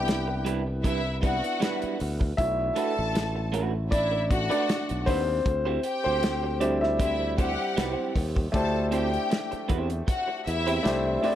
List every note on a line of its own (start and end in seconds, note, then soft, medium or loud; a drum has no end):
0.00 1.40 C2 medium
0.00 1.23 B3 medium
0.00 0.80 D4 soft
0.00 0.81 E4 medium
0.00 0.42 G4 medium
0.00 0.80 B4 medium
0.00 0.42 G5 loud
0.08 snare loud
0.08 closed hi-hat medium
0.28 muted clean electric guitar stroke soft
0.45 0.61 G3 medium
0.45 0.61 D4 medium
0.45 0.61 E4 medium
0.45 0.61 B4 medium
0.45 closed hi-hat medium
0.66 muted clean electric guitar stroke soft
0.84 0.99 G3 medium
0.84 1.00 D4 medium
0.84 1.15 E4 medium
0.84 1.00 E4 medium
0.84 1.00 B4 medium
0.84 1.15 E5 medium
0.84 kick medium
0.84 closed hi-hat medium
1.05 muted clean electric guitar stroke soft
1.22 1.34 G3 medium
1.22 1.58 B3 soft
1.22 1.35 D4 medium
1.22 1.58 D4 soft
1.22 1.35 E4 medium
1.22 1.58 E4 soft
1.22 1.96 F#4 medium
1.22 1.35 B4 medium
1.22 1.96 F#5 loud
1.22 kick medium
1.22 closed hi-hat medium
1.43 muted clean electric guitar stroke soft
1.43 closed hi-hat medium
1.60 1.96 G3 medium
1.60 1.97 D4 medium
1.60 1.97 E4 medium
1.60 1.97 B4 medium
1.60 snare medium
1.60 closed hi-hat medium
1.82 muted fingered electric bass stroke soft
1.82 closed hi-hat soft
1.99 2.32 D2 medium
1.99 muted clean electric guitar stroke soft
1.99 open hi-hat medium
2.20 muted clean electric guitar stroke soft
2.20 kick medium
2.37 2.70 B1 medium
2.37 3.50 A3 soft
2.37 3.50 D4 soft
2.37 3.89 E4 medium
2.37 3.50 F#4 medium
2.37 3.96 E5 loud
2.37 kick loud
2.37 closed hi-hat medium
2.76 2.91 A3 medium
2.76 2.92 D4 medium
2.76 2.92 F#4 medium
2.76 3.49 A4 medium
2.76 2.92 B4 medium
2.76 3.49 A5 loud
2.76 closed hi-hat medium
2.99 4.48 A1 medium
3.14 muted clean electric guitar stroke soft
3.14 snare loud
3.14 closed hi-hat medium
3.35 muted clean electric guitar stroke soft
3.52 3.74 A3 medium
3.52 3.73 D4 medium
3.52 3.72 F#4 medium
3.52 3.72 B4 medium
3.52 closed hi-hat medium
3.73 muted clean electric guitar stroke soft
3.91 4.29 D4 medium
3.91 4.22 E4 medium
3.91 4.49 D5 medium
3.91 4.23 E5 medium
3.91 muted clean electric guitar stroke soft
3.91 kick medium
3.91 closed hi-hat medium
4.12 muted clean electric guitar stroke medium
4.30 4.65 A3 soft
4.30 4.50 D4 soft
4.30 5.03 F#4 medium
4.30 4.65 F#4 soft
4.30 5.04 F#5 loud
4.30 kick medium
4.30 closed hi-hat medium
4.50 4.64 A3 medium
4.50 4.64 D4 medium
4.50 5.04 D4 medium
4.50 4.64 F#4 medium
4.50 4.64 B4 medium
4.50 5.03 D5 loud
4.50 closed hi-hat soft
4.68 muted clean electric guitar stroke soft
4.68 snare medium
4.68 closed hi-hat medium
4.89 5.05 B1 medium
4.89 closed hi-hat soft
5.06 5.39 D#2 medium
5.06 5.19 A3 medium
5.06 6.02 C4 medium
5.06 5.19 D4 medium
5.06 5.20 F#4 medium
5.06 5.20 B4 medium
5.06 6.03 C5 loud
5.06 kick medium
5.06 open hi-hat medium
5.27 muted clean electric guitar stroke soft
5.45 5.77 D2 medium
5.45 muted clean electric guitar stroke soft
5.45 kick medium
5.45 closed hi-hat medium
5.65 5.80 C4 medium
5.65 5.80 E4 medium
5.65 5.79 G4 medium
5.65 5.79 C5 medium
5.83 6.58 G4 medium
5.83 6.57 G5 loud
5.83 muted clean electric guitar stroke soft
5.83 closed hi-hat medium
6.04 7.56 D2 medium
6.04 6.58 C4 medium
6.04 6.63 C5 medium
6.04 muted clean electric guitar stroke soft
6.23 snare loud
6.23 closed hi-hat medium
6.43 muted clean electric guitar stroke soft
6.60 7.72 G3 medium
6.60 6.76 C4 medium
6.60 7.73 C4 soft
6.60 6.81 D4 medium
6.60 6.77 E4 medium
6.60 6.81 E4 medium
6.60 6.77 G4 medium
6.60 6.77 C5 medium
6.60 6.82 D5 medium
6.60 closed hi-hat medium
6.81 8.12 E4 medium
6.81 8.11 E5 medium
6.81 snare soft
6.99 7.15 C4 medium
6.99 7.30 E4 medium
6.99 7.15 E4 medium
6.99 7.15 G4 medium
6.99 7.16 C5 medium
6.99 7.30 E5 medium
6.99 kick medium
6.99 closed hi-hat medium
7.21 muted clean electric guitar stroke soft
7.38 7.50 C4 medium
7.38 7.50 E4 medium
7.38 8.11 G4 loud
7.38 7.51 G4 medium
7.38 7.51 C5 medium
7.38 8.11 F#5 loud
7.38 kick medium
7.38 closed hi-hat medium
7.59 muted clean electric guitar stroke soft
7.76 7.94 C2 medium
7.76 7.91 B3 medium
7.76 7.92 D#4 medium
7.76 7.92 F#4 medium
7.76 7.93 B4 medium
7.76 snare medium
7.76 closed hi-hat medium
7.91 8.12 C4 medium
7.91 8.13 E4 medium
7.91 8.13 G4 medium
7.91 8.13 C5 medium
8.15 8.47 D#2 medium
8.15 muted clean electric guitar stroke soft
8.15 kick medium
8.15 open hi-hat medium
8.36 muted clean electric guitar stroke soft
8.36 kick medium
8.52 9.16 D2 loud
8.52 9.47 A3 medium
8.52 9.47 D4 medium
8.52 9.48 E4 medium
8.52 9.48 G4 medium
8.52 8.85 A4 medium
8.52 9.48 C5 medium
8.52 8.85 A5 loud
8.52 kick loud
8.52 closed hi-hat medium
8.91 9.07 C4 medium
8.91 9.07 E4 medium
8.91 9.08 G4 medium
8.91 9.66 G4 medium
8.91 9.08 C5 medium
8.91 9.66 G5 medium
8.91 closed hi-hat medium
9.14 closed hi-hat soft
9.30 muted clean electric guitar stroke soft
9.30 snare loud
9.30 closed hi-hat medium
9.51 muted clean electric guitar stroke soft
9.51 muted fingered electric bass stroke soft
9.51 closed hi-hat soft
9.68 10.01 E2 medium
9.68 9.90 C4 medium
9.68 9.89 E4 medium
9.68 9.89 G4 medium
9.68 9.88 C5 medium
9.68 kick medium
9.68 closed hi-hat medium
9.89 muted clean electric guitar stroke soft
9.89 closed hi-hat medium
10.07 10.39 F#4 medium
10.07 10.39 F#5 medium
10.07 muted clean electric guitar stroke soft
10.07 kick medium
10.07 closed hi-hat medium
10.28 muted clean electric guitar stroke soft
10.46 10.78 E2 medium
10.46 11.19 E4 medium
10.46 11.19 E5 loud
10.46 closed hi-hat medium
10.66 10.80 C4 medium
10.66 10.80 E4 medium
10.66 10.80 G4 medium
10.66 10.80 C5 medium
10.66 closed hi-hat medium
10.83 11.16 C2 medium
10.83 11.08 A3 medium
10.83 11.09 D4 medium
10.83 11.09 E4 medium
10.83 11.10 G4 medium
10.83 11.10 C5 medium
10.83 muted clean electric guitar stroke soft
10.83 snare loud
10.83 closed hi-hat medium
11.22 11.35 A3 medium
11.22 11.35 C4 medium
11.22 11.35 D4 medium
11.22 11.35 E4 medium
11.22 11.35 G4 medium
11.22 11.35 C5 medium
11.22 11.35 D5 medium
11.22 open hi-hat medium